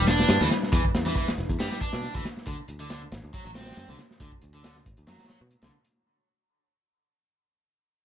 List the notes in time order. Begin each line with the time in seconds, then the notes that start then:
Already playing: E1 G3 D4 E4 B4
0.07 D4, snare, closed hi-hat
0.20 snare
0.28 G2, snare, closed hi-hat
0.41 D2 E3, snare
0.51 snare, closed hi-hat
0.63 snare
0.72 E2 E3, kick, closed hi-hat
0.85 kick
0.95 E2, snare, closed hi-hat
1.06 E3, snare
1.16 E3, kick, closed hi-hat
1.28 snare, closed hi-hat
1.38 E1, snare
1.49 E2, kick, closed hi-hat
1.60 G2 G3, snare, closed hi-hat
1.71 G3, snare
1.81 D4, kick, closed hi-hat
1.93 B2, snare, closed hi-hat
2.04 snare
2.14 D2 E3, kick, closed hi-hat
2.25 snare, closed hi-hat
2.37 snare
2.47 D2 D3 A3 F#4 C5, kick, closed hi-hat
2.68 D2, closed hi-hat
2.80 D3, closed hi-hat
2.90 D3, snare, closed hi-hat
3.12 A1, snare, closed hi-hat
3.24 D2
3.34 F#3, kick, closed hi-hat
3.45 A1 F#3
3.55 C4, snare, closed hi-hat
3.61 snare, closed hi-hat
3.66 snare, closed hi-hat
3.72 snare, closed hi-hat
3.76 F#2, snare, closed hi-hat
3.89 C2 D3, snare
3.99 snare, closed hi-hat
4.11 snare
4.20 D2 D3, kick, closed hi-hat
4.32 kick
4.42 D2, closed hi-hat
4.54 D3
4.64 D3, snare, closed hi-hat
4.76 snare
4.86 A1, kick, closed hi-hat
4.97 D2, closed hi-hat
5.07 F#2 F#3, snare, closed hi-hat
5.13 snare, closed hi-hat
5.18 F#3, snare, closed hi-hat
5.24 snare, closed hi-hat
5.29 F#3, snare, closed hi-hat
5.41 B2
5.51 closed hi-hat
5.63 C2 D3, snare, closed hi-hat
5.84 closed hi-hat